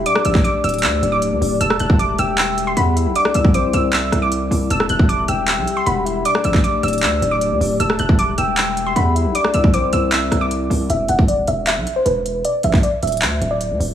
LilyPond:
<<
  \new Staff \with { instrumentName = "Synth pluck" } { \time 4/4 \key e \minor \tempo 4 = 155 d'''8 e'''8 d'''8 e'''8 e'''8. d'''4~ d'''16 | e'''8 fis'''8 d'''8 e'''8 e'''8. c'''16 b''4 | d'''8 e'''8 d'''8 e'''8 e'''8. d'''4~ d'''16 | e'''8 fis'''8 d'''8 e'''8 e'''8. c'''16 b''4 |
d'''8 e'''8 d'''8 e'''8 e'''8. d'''4~ d'''16 | e'''8 fis'''8 d'''8 e'''8 e'''8. c'''16 b''4 | d'''8 e'''8 d'''8 e'''8 e'''8. d'''4~ d'''16 | e''8 fis''8 d''8 e''8 e''8. c''16 b'4 |
d''8 e''8 d''8 e''8 e''8. d''4~ d''16 | }
  \new Staff \with { instrumentName = "Soft synth lead" } { \time 4/4 \key e \minor d''4 d''2. | a''4. g''4. fis''8 e''8 | d''4 c''4 e''4 r4 | a''4. g''4. fis''8 e''8 |
d''4 d''2. | a''4. g''4. fis''8 e''8 | d''4 c''4 e''4 r4 | r1 |
r1 | }
  \new Staff \with { instrumentName = "Glass harmonica" } { \time 4/4 \key e \minor <a g' d''>1 | <g g' e''>1 | <c' e' d''>1 | <g g' e''>1 |
<a g' d''>1 | <g g' e''>1 | <c' e' d''>1 | r1 |
r1 | }
  \new Staff \with { instrumentName = "808-style bass" } { \clef bass \time 4/4 \key e \minor r8 a,,8 r8 d,,8 d,8 d,,8. d,16 d,,8 | e,,8 e,,4 e,,4. e,8. b,,16 | r8 c,4 c,4 c,4 c,8 | e,,8 e,,4 e,,8. b,,16 r8 e,,4 |
r8 a,,8 r8 d,,8 d,8 d,,8. d,16 d,,8 | e,,8 e,,4 e,,4. e,8. b,,16 | r8 c,4 c,4 c,4 c,8 | e,,8 e,,4 e,,8. b,,16 r8 e,,4 |
r8 a,,8 r8 d,,8 d,8 d,,8. d,16 d,,8 | }
  \new DrumStaff \with { instrumentName = "Drums" } \drummode { \time 4/4 hh16 ss16 hh16 <hc bd>16 hh8 hh32 hh32 hh32 hh32 <hc hh>8 hh8 hh8 hho8 | hh16 ss16 hh16 bd16 hh8 hh8 <hc hh>8 hh8 hh8 hh8 | hh16 ss16 hh16 bd16 hh8 hh8 <hc hh>8 <hh ss>8 hh8 hho8 | hh16 ss16 hh16 bd16 hh8 hh8 <hc hh>8 hh8 hh8 hh8 |
hh16 ss16 hh16 <hc bd>16 hh8 hh32 hh32 hh32 hh32 <hc hh>8 hh8 hh8 hho8 | hh16 ss16 hh16 bd16 hh8 hh8 <hc hh>8 hh8 hh8 hh8 | hh16 ss16 hh16 bd16 hh8 hh8 <hc hh>8 <hh ss>8 hh8 hho8 | hh8 hh16 bd16 hh8 hh8 <hc hh>8 hh8 hh8 hh8 |
hh8 hh16 <hc bd>16 hh8 hh32 hh32 hh32 hh32 <hc hh>8 hh8 hh8 hho8 | }
>>